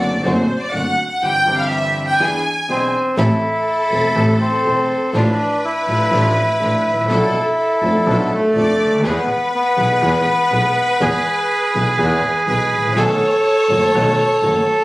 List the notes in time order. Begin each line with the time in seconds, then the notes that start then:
Already playing: F#1 F#2 D3 F#3 A3 C4 D4 F#4
0.01 D5
0.23 F#1 F#2 D3 F#3 A3 C4 D4 F#4 C5
0.61 D5
0.72 F#1 F#2 D3 F#3 A3 C4 D4 F#4 F#5
1.09 F#5
1.22 G1 G2 E3 G3 C4 E4 G4 G5
1.45 G1 G2 E3 G3 C4 E4 G4
1.58 F5
1.69 E5
2.07 G5
2.19 E2 E3 B3 D4 E4 G#4 G#5
2.68 B1 B2 E3 B3 C4 D4 E4 G#4
3.18 A1 A2 E3 A3 C4 E4 A4
3.91 E1 E2 E3 A3 C4 E4 A4
4.15 A1 A2 E3 A3 C4 E4 A4
4.41 C4
4.65 E1 E2 E3 A3 C4 E4 A4
5.13 A1 A2 F3 D4 E4 F4 A4 B4
5.65 E4
5.87 A1 A2 F3 D4 E4 F4 A4
6.11 A1 A2 F3 D4 E4 F4 A4
6.60 A1 A2 F3 D4 E4 F4 A4
6.86 A1
6.91 G#1
6.98 A1
7.04 A#1
7.09 B1 B2 F3 B3 D4 A4
7.57 A4
7.82 F1 F2 F3 B3 D4 A4
8.06 B1 B2 F3 B3 D4 A4
8.25 B3
8.34 A3
8.55 F1 F2 F3 B3 D4 A4 D5
8.80 D2
8.86 C#2
8.92 D2
8.97 D#2
9.03 E2 E3 G#3 B3 E4 G#4 B4
9.08 B3
9.55 B3
9.77 B1 B2 E3 G#3 B3 E4 G#4
10.02 E2 E3 G#3 B3 E4 G#4
10.51 B1 B2 E3 G#3 B3 E4 G#4
11.01 E2 E3 G#3 B3 E4 G#4
11.74 B1 B2 E3 G#3 B3 E4 G#4
11.98 E2 E3 G#3 B3 E4 G#4
12.47 B1 B2 E3 G#3 B3 E4 G#4 B4
12.72 A1
12.78 G#1
12.85 A1
12.90 A#1
12.96 B1 B2 D#3 A3 B3 D#4 F#4 A4 C#5
13.69 F#1 F#2 D#3 A3 B3 D#4 F#4 A4
13.93 B1 B2 D#3 A3 B3 D#4 F#4 A4
14.42 F#1 F#2 D#3 A3 B3 D#4 F#4 A4